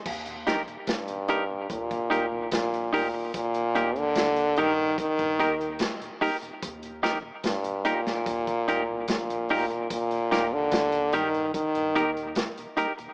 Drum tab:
CC |x---------------|----------------|----------------|----------------|
HH |-xxxxxx-xxx-xxo-|xxxxxxx-xxxxxxox|xxx-xxx-xxx-xxox|xxx-xxxxxxxxxxxx|
SD |--o-o-------o---|----o-------o---|--o-o--o----o---|--o-o-------o---|
BD |o---o---oo--o---|o---o---oo--o---|o---o---oo--o---|o---o---o---o---|